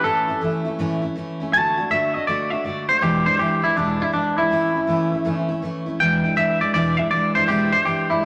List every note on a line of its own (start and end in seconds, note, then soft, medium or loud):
0.04 0.28 A2 medium
0.04 0.29 E3 medium
0.04 0.29 A3 medium
0.04 0.29 C#4 medium
0.04 0.27 E4 medium
0.04 0.41 A4 loud
0.28 0.41 A3 soft
0.28 0.42 C#4 soft
0.28 0.42 E4 medium
0.41 0.66 E3 medium
0.41 0.66 A3 medium
0.41 0.65 C#4 medium
0.41 0.63 E4 medium
0.65 0.79 A3 medium
0.65 0.79 C#4 medium
0.65 0.79 E4 medium
0.79 1.03 A2 medium
0.79 1.03 E3 medium
0.79 1.03 A3 medium
0.79 1.02 C#4 medium
0.79 1.00 E4 loud
1.02 1.15 A3 soft
1.02 1.17 C#4 medium
1.02 1.16 E4 medium
1.16 1.40 E3 medium
1.16 1.40 A3 medium
1.16 1.40 C#4 medium
1.16 1.39 E4 medium
1.40 1.53 A3 medium
1.40 1.54 C#4 medium
1.40 1.54 E4 medium
1.53 1.78 D3 medium
1.53 1.78 A3 medium
1.53 1.78 D4 medium
1.53 1.76 F#4 medium
1.53 1.90 A5 loud
1.77 1.90 A3 soft
1.77 1.91 D4 soft
1.77 1.91 F#4 medium
1.90 2.15 D3 medium
1.90 2.15 A3 medium
1.90 2.15 D4 medium
1.90 2.13 F#4 medium
1.90 2.14 E5 medium
2.14 2.27 A3 soft
2.14 2.28 D4 medium
2.14 2.28 F#4 medium
2.14 2.27 D#5 medium
2.27 2.52 D3 medium
2.27 2.52 A3 medium
2.27 2.52 D4 medium
2.27 2.50 F#4 medium
2.27 2.50 D5 medium
2.50 2.65 D4 medium
2.50 2.65 F#4 soft
2.50 2.65 E5 loud
2.55 2.64 A3 soft
2.64 2.89 D3 medium
2.64 2.89 A3 medium
2.64 2.89 D4 medium
2.64 2.87 F#4 medium
2.64 2.88 D5 medium
2.88 3.03 A3 soft
2.88 3.02 D4 soft
2.88 3.02 F#4 medium
2.88 3.02 C5 loud
3.01 3.26 E2 medium
3.01 3.26 B2 medium
3.01 3.26 E3 medium
3.01 3.26 G#3 medium
3.01 3.25 D4 medium
3.01 3.24 E4 medium
3.01 3.26 G4 medium
3.25 3.37 E3 soft
3.25 3.38 G#3 soft
3.25 3.40 D4 medium
3.25 3.39 E4 soft
3.25 3.39 C5 medium
3.38 3.63 E3 medium
3.38 3.63 G#3 medium
3.38 3.62 D4 medium
3.38 3.61 E4 medium
3.38 3.63 G4 medium
3.62 3.76 E3 soft
3.62 3.76 G#3 soft
3.62 3.77 D4 soft
3.62 3.76 E4 medium
3.62 3.77 E4 medium
3.76 4.01 E2 medium
3.76 4.01 B2 medium
3.76 4.01 E3 medium
3.76 4.01 G#3 medium
3.76 4.02 D4 medium
3.76 4.00 D4 medium
3.76 3.99 E4 medium
4.00 4.12 E3 soft
4.00 4.13 G#3 soft
4.00 4.14 D4 soft
4.00 4.14 E4 medium
4.00 4.13 E4 medium
4.13 4.37 E3 medium
4.13 4.38 G#3 medium
4.13 4.37 D4 medium
4.13 4.38 D4 medium
4.13 4.36 E4 medium
4.37 4.50 E3 soft
4.37 4.52 G#3 soft
4.37 4.52 D4 medium
4.37 4.51 E4 medium
4.37 5.42 E4 loud
4.51 4.75 A2 medium
4.51 4.75 E3 medium
4.51 4.76 A3 medium
4.51 4.74 C#4 medium
4.51 4.73 E4 medium
4.74 4.87 A3 soft
4.74 4.88 C#4 soft
4.74 4.88 E4 medium
4.87 5.12 E3 medium
4.87 5.12 A3 medium
4.87 5.12 C#4 medium
4.87 5.11 E4 medium
5.12 5.25 A3 soft
5.12 5.25 C#4 soft
5.12 5.25 E4 medium
5.25 5.49 A2 medium
5.25 5.49 E3 medium
5.25 5.50 A3 medium
5.25 5.49 C#4 medium
5.25 5.47 E4 medium
5.49 5.62 A3 medium
5.49 5.63 C#4 medium
5.49 5.62 E4 medium
5.62 5.86 E3 medium
5.62 5.87 A3 medium
5.62 5.87 C#4 medium
5.62 5.85 E4 medium
5.86 6.01 A3 soft
5.86 6.01 C#4 medium
5.86 6.00 E4 medium
6.00 6.24 E2 medium
6.00 6.24 B2 medium
6.00 6.24 E3 medium
6.00 6.25 G#3 medium
6.00 6.23 D4 medium
6.00 6.22 E4 medium
6.00 6.36 G5 loud
6.24 6.35 E3 soft
6.24 6.36 G#3 soft
6.24 6.37 D4 soft
6.24 6.37 E4 medium
6.36 6.61 E3 medium
6.36 6.61 G#3 medium
6.36 6.60 D4 medium
6.36 6.59 E4 medium
6.36 6.60 E5 loud
6.60 6.74 E3 soft
6.60 6.74 G#3 soft
6.60 6.74 D4 soft
6.60 6.74 E4 medium
6.60 6.73 D5 medium
6.74 6.98 E2 medium
6.74 6.98 B2 medium
6.74 6.99 E3 medium
6.74 6.98 G#3 medium
6.74 6.98 D4 medium
6.74 6.96 E4 medium
6.74 6.97 D5 medium
6.97 7.10 E3 soft
6.97 7.12 G#3 soft
6.97 7.12 D4 soft
6.97 7.11 E4 medium
6.97 7.10 E5 medium
7.11 7.35 E3 medium
7.11 7.36 G#3 medium
7.11 7.35 D4 medium
7.11 7.34 E4 medium
7.11 7.34 D5 medium
7.35 7.48 E3 soft
7.35 7.49 G#3 medium
7.35 7.49 D4 medium
7.35 7.49 E4 medium
7.35 7.48 C5 medium
7.48 7.73 E2 medium
7.48 7.73 B2 medium
7.48 7.73 E3 medium
7.48 7.73 G#3 medium
7.48 7.72 D4 medium
7.48 7.71 E4 medium
7.48 7.72 G4 loud
7.72 7.85 E3 soft
7.72 7.86 G#3 soft
7.72 7.86 D4 medium
7.72 7.86 E4 soft
7.72 7.86 C5 medium
7.85 8.10 E3 medium
7.85 8.10 G#3 medium
7.85 8.09 D4 medium
7.85 8.08 E4 medium
7.85 8.09 G4 medium
8.10 8.23 E3 soft
8.10 8.23 G#3 soft
8.10 8.24 D4 medium
8.10 8.23 E4 medium
8.10 8.24 E4 medium